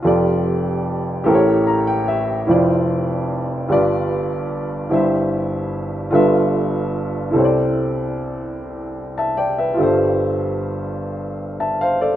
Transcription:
\new Staff \with { instrumentName = "Upright piano" } { \time 6/8 \key c \major \tempo 4. = 49 << { r2 bes''16 g''16 e''8 | r2. | r2. | r2 r16 <e'' a''>16 <d'' g''>16 <b' e''>16~ |
<b' e''>16 r2 <e'' a''>16 <c'' f''>16 <a' d''>16 | } \\ { <f,, f, f' g' a' d''>4. <a,, a, g' a' bes' c'' cis''>4. | <f,, f, e' f' c'' d''>4. <g,, g, f' g' b' d''>4. | <g,, g, e' g' c'' e''>4. <g,, g, f' a' b' e''>4. | <c, c e' a' c'' des'' d''>2. |
<g,, g, f' g' a' c''>2. | } >> }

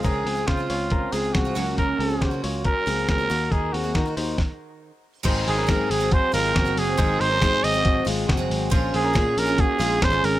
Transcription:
<<
  \new Staff \with { instrumentName = "Trumpet" } { \time 4/4 \key aes \mixolydian \tempo 4 = 138 aes'4 f'4. aes'8 ges'4 | bes'4. r8 bes'4 bes'4 | aes'8 ges'4 r2 r8 | r8 aes'8 bes'8 aes'8 c''8 bes'4 aes'8~ |
aes'8 c''4 ees''4 r4. | r8 aes'4 bes'8 aes'4 c''8 bes'8 | }
  \new Staff \with { instrumentName = "Clean electric guitar" } { \time 4/4 \key aes \mixolydian <des' bes'>8 <c' aes'>8 <f' c''>8 <f' des''>8 <des' bes'>8 <c' aes'>4 <bes ges'>8 | <des' bes'>8 <c' aes'>8 <ges' c''>8 <f' des''>8 <des' bes'>8 <c' aes'>4 <bes ges'>8 | <ees' bes'>8 <c' aes'>8 <ees' bes'>8 <ees' c''>8 r2 | <ees' c''>8. <des' bes'>16 <c' aes'>4 <c' ges'>8 <aes f'>8 <c' ges'>4 |
<ees' c''>8. <des' bes'>16 <c' aes'>4 <c' ges'>8 <aes f'>8 <c' ges'>4 | <f' c''>8. <des' bes'>16 <des' aes'>4 <bes ges'>8 <aes f'>8 <des' aes'>4 | }
  \new Staff \with { instrumentName = "Twelve-string acoustic guitar" } { \time 4/4 \key aes \mixolydian <f aes c' f'>8. <aes c' f'>8 <aes c' f'>4~ <aes c' f'>16 <f aes c' f'>8. <aes c' f'>16 <des ges bes des' ges'>8~ | <des ges bes des' ges'>8. <bes des' ges'>8 <bes des' ges'>4~ <bes des' ges'>16 <ges bes des' ges'>8. <bes des' ges'>16 <ees bes ees' ges'>8~ | <ees bes ees' ges'>8. <bes ees' ges'>8 <bes ees' ges'>8. r2 | <aes, ees ges aes c' aes'>4 <ges aes c' aes'>8. <ges aes c' aes'>8. <ges aes c' aes'>8. <ges aes c' aes'>8. |
<aes, ees ges aes c' aes'>4 <ges aes c' aes'>8. <ges aes c' aes'>8. <ges aes c' aes'>8. <ges aes c' aes'>8. | <bes, aes des' f' aes'>4 <aes des' f' aes'>8. <des' f' aes'>8. <aes des' f' aes'>8. <des' f' aes'>8. | }
  \new Staff \with { instrumentName = "Picked electric bass" } { \clef bass \time 4/4 \key aes \mixolydian des,8 des,8 des8 des,4 des,8 c,8 des,8~ | des,8 des,8 des8 des,8. r16 des,8 des,8 ees,8 | ees,8 ees,8 ees8 ees,8 r2 | aes,,8 aes,,8 aes,8 aes,,8. r16 aes,,8 ges,,8 ges,,8 |
aes,,8 aes,,8 aes,8 aes,,4 aes,,8 ges,,8 aes,,8 | bes,,8 bes,,8 bes,8 bes,,8. r16 bes,,8 aes,,8 aes,,8 | }
  \new DrumStaff \with { instrumentName = "Drums" } \drummode { \time 4/4 <hh bd>8 hho8 <hh bd sn>8 hho8 <hh bd>8 hho8 <hh bd sn>8 hho8 | <hh bd>8 hho8 <hh bd sn>8 hho8 <hh bd>8 hho8 <hh bd sn>8 hho8 | <hh bd>8 hho8 <hh bd sn>8 hho8 <bd sn>4 r4 | <cymc hh bd>8 hho8 <hh bd sn>8 hho8 <hh bd>8 hho8 <hh bd sn>8 hho8 |
<hh bd>8 hho8 <hh bd sn>8 hho8 <hh bd>8 hho8 <hh bd sn>8 hho8 | <hh bd>8 hho8 <hh bd sn>8 hho8 <hh bd>8 hho8 <hh bd sn>8 hho8 | }
>>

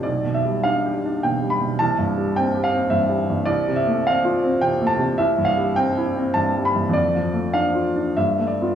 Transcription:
<<
  \new Staff \with { instrumentName = "Grand piano" } { \time 3/4 \key c \major \tempo 4 = 104 d''8 e''8 f''4 g''8 b''8 | a''4 g''8 f''8 e''4 | d''8 e''8 f''4 g''8 a''8 | e''8 f''8 g''4 a''8 b''8 |
d''4 f''4 e''8 d''8 | }
  \new Staff \with { instrumentName = "Grand piano" } { \clef bass \time 3/4 \key c \major \tuplet 3/2 { b,,8 b,8 g8 d'8 g'8 d'8 b,8 g8 b,8 } | \tuplet 3/2 { c,8 g,8 g8 c'8 g'8 c'8 g,8 g8 g,8 } | \tuplet 3/2 { c,8 c8 a8 c'8 f'8 c'8 c8 a8 c8 } | \tuplet 3/2 { c,8 g,8 g8 c'8 e'8 c'8 g,8 g8 g,8 } |
\tuplet 3/2 { f,8 f8 a8 d'8 f'8 d'8 g,8 a8 <b f'>8 } | }
>>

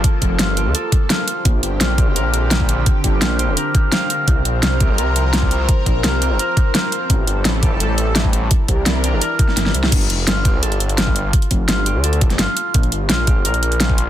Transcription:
<<
  \new Staff \with { instrumentName = "Harp" } { \time 4/4 \key g \dorian \tempo 4 = 170 r4 f'8 g'8 a'16 r8. f'8 r8 | r4 f'8 g'8 bes'16 r8. f'8 r8 | r4 f'8 g'8 bes'16 r8. f''8 bes'8 | r4 f'8 g'8 bes'16 r8. f'8 r8 |
r4 f'8 g'8 bes'16 r8. f'8 r8 | r4 e'8 g'8 a'16 r8. e'8 r8 | r4 e'8 g'8 bes'16 r8. e'8 r8 | r4 f'8 g'8 a'16 r8. f'8 r8 |
r4 f'8 g'8 a'16 r8. f'8 r8 | r4 f'8 g'8 bes'16 r8. f'8 r8 | }
  \new Staff \with { instrumentName = "Analog synth pad" } { \time 4/4 \key g \dorian << { <f a'>2.~ <f a'>8 <d g'>8~ | <d g'>1~ | <d g'>1 | <f bes'>1~ |
<f bes'>1 | <g a'>1 | <e bes'>1 | r1 |
r1 | r1 | } \\ { bes2.~ bes8 c'8~ | c'1~ | c'1~ | c'1~ |
c'1~ | c'1 | d'1 | r1 |
r1 | r1 | } >> }
  \new Staff \with { instrumentName = "Detuned saw bass" } { \clef bass \time 4/4 \key g \dorian r8 f,,8 g,,8. d,16 r2 | bes,,8 g,,8 bes,,8. f,,16 bes,,2 | r8 g,,8 bes,,8. f,,16 r2 | c,8 bes,,8 c,8. g,,16 c,2 |
r8 bes,,8 c,8. g,,16 r2 | a,,8 g,,8 a,,8. e,,16 a,,2 | r8 c,8 c,8. g,,16 r4 g,,8 c,16 c,16 | g,,8 f,,8 g,,8. d,16 g,,2 |
r8 f,,8 g,,8. d,8. d,,16 f,,16 g,,16 r8. | bes,,8 g,,8 bes,,8. f,,16 bes,,2 | }
  \new DrumStaff \with { instrumentName = "Drums" } \drummode { \time 4/4 <hh bd>8 <hh bd>8 <hh sn>8 hh8 hh8 <hh bd>8 <hh sn>8 hh8 | <hh bd>8 hh8 <hh sn>8 <hh bd>8 hh8 hh8 <hh sn>16 bd16 hh8 | <hh bd>8 <hh bd>8 <hh sn>8 hh8 hh8 <hh bd>8 <hh sn>8 hh8 | <hh bd>8 hh8 <hh sn>8 <hh bd>8 hh8 hh8 <hh sn>16 bd16 hh8 |
<hh bd>8 <hh bd>8 <hh sn>8 hh8 hh8 <hh bd>8 <hh sn>8 hh8 | <hh bd>8 hh8 <hh sn>8 <hh bd>8 hh8 hh8 <hh sn>16 bd16 hh8 | <hh bd>8 <hh bd>8 <hh sn>8 hh8 hh8 <hh bd>16 sn16 <hh sn>16 sn16 hh16 sn16 | <cymc hh bd>16 hh16 hh8 <hh sn>8 <hh bd>8 hh16 hh16 hh16 hh16 <hh sn>16 bd16 hh8 |
<hh bd>16 hh16 <hh bd>8 <hh sn>8 hh8 hh16 hh16 <hh bd>16 <hh sn>16 <hh sn>8 hh8 | <hh bd>16 hh16 hh8 <hh sn>8 <hh bd>8 hh16 hh16 hh16 hh16 <hh sn>16 bd16 hh8 | }
>>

